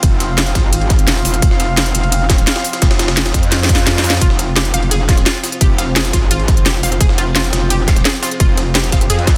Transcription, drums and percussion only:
0.03 kick, closed hi-hat, ride
0.20 snare, closed hi-hat, ride
0.38 snare, closed hi-hat, ride
0.46 snare, closed hi-hat
0.55 kick, snare, closed hi-hat, ride
0.73 closed hi-hat, ride
0.81 ride
0.90 kick, snare, closed hi-hat, ride
0.99 closed hi-hat
1.07 snare, closed hi-hat, ride
1.16 snare
1.25 snare, open hi-hat, ride
1.34 closed hi-hat
1.42 kick, closed hi-hat, ride
1.51 snare
1.60 snare, closed hi-hat, ride
1.77 snare, closed hi-hat, ride
1.86 closed hi-hat
1.95 closed hi-hat, ride
2.03 ride
2.12 closed hi-hat, ride
2.30 kick, snare, closed hi-hat, ride
2.38 closed hi-hat, ride
2.47 snare, closed hi-hat, ride
2.56 snare, ride
2.64 open hi-hat, ride
2.73 snare, closed hi-hat, ride
2.82 kick, snare, closed hi-hat, ride
2.91 snare, ride
2.99 snare, closed hi-hat, ride
3.08 snare, ride
3.17 snare, closed hi-hat, ride
3.26 snare, closed hi-hat, ride
3.34 kick, snare, closed hi-hat, ride
3.43 closed hi-hat
3.52 snare, closed hi-hat, ride
3.63 snare
3.69 kick, snare, closed hi-hat, ride
3.75 snare, closed hi-hat
3.87 snare, closed hi-hat, ride
3.95 snare
3.98 snare
4.04 snare, open hi-hat, ride
4.10 snare
4.13 snare, closed hi-hat, ride
4.17 snare, ride
4.21 kick, closed hi-hat, ride
4.30 snare
4.39 snare, closed hi-hat, ride
4.56 snare, closed hi-hat, ride
4.65 closed hi-hat
4.74 closed hi-hat, ride
4.83 ride
4.91 closed hi-hat, ride
5.09 kick, snare, closed hi-hat, ride
5.17 snare, closed hi-hat
5.26 snare, closed hi-hat, ride
5.35 ride
5.44 snare, open hi-hat, ride
5.52 closed hi-hat
5.61 kick, closed hi-hat, ride
5.78 snare, closed hi-hat, ride
5.96 snare, closed hi-hat, ride
6.05 snare, closed hi-hat
6.13 kick, snare, closed hi-hat, ride
6.31 closed hi-hat, ride
6.40 ride
6.48 kick, snare, closed hi-hat, ride
6.57 closed hi-hat
6.66 snare, closed hi-hat, ride
6.74 snare
6.83 snare, open hi-hat, ride
6.92 closed hi-hat
7.01 kick, closed hi-hat, ride
7.09 snare
7.18 snare, closed hi-hat, ride
7.35 snare, closed hi-hat, ride
7.44 closed hi-hat
7.53 snare, closed hi-hat, ride
7.70 closed hi-hat, ride
7.88 kick, snare, closed hi-hat, ride
7.96 snare, closed hi-hat
8.05 snare, closed hi-hat, ride
8.14 ride
8.23 snare, open hi-hat, ride
8.31 closed hi-hat
8.40 kick, closed hi-hat, ride
8.57 snare, closed hi-hat, ride
8.75 snare, closed hi-hat, ride
8.84 snare, closed hi-hat
8.92 kick, snare, closed hi-hat, ride
9.01 closed hi-hat
9.10 closed hi-hat, ride
9.19 ride
9.27 kick, snare, closed hi-hat, ride

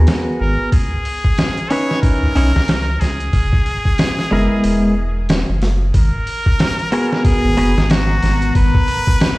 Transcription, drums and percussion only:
0.07 snare, open hi-hat
0.72 kick, open hi-hat
1.05 open hi-hat
1.25 kick
1.38 snare, open hi-hat
1.57 closed hi-hat
1.70 open hi-hat
1.91 snare
2.03 kick, open hi-hat
2.36 open hi-hat
2.56 snare
2.68 snare, open hi-hat
3.01 snare, open hi-hat
3.20 closed hi-hat
3.33 kick, open hi-hat
3.53 kick
3.66 open hi-hat
3.85 kick
3.98 snare, open hi-hat
4.19 snare
4.64 open hi-hat
5.29 snare, open hi-hat
5.62 snare, open hi-hat
5.94 kick, open hi-hat
6.27 open hi-hat
6.46 kick
6.59 snare, open hi-hat
6.79 closed hi-hat
6.92 open hi-hat
7.12 snare
7.25 kick, open hi-hat
7.57 open hi-hat
7.78 snare
7.90 snare, open hi-hat
8.22 snare, open hi-hat
8.42 closed hi-hat
8.55 kick, open hi-hat
8.75 kick
8.88 open hi-hat
9.07 kick
9.20 snare, open hi-hat

